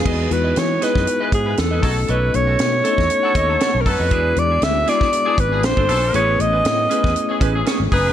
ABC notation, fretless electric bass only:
X:1
M:4/4
L:1/16
Q:"Swing 16ths" 1/4=118
K:E
V:1 name="Fretless electric bass" clef=bass
E,,2 E,,2 E,2 z F,, z2 G,,2 E,,2 B,,,2 | B,,,2 B,,,2 B,,2 z E,, z2 D,,2 z B,,, F,, ^E,, | E,,2 E,,2 =D,,2 z4 G,,,2 ^A,,, =G,,, B,,, A,,, | A,,,2 A,,,2 A,,2 z E,, z2 A,,,2 z G,,, F,,, ^E,,, |]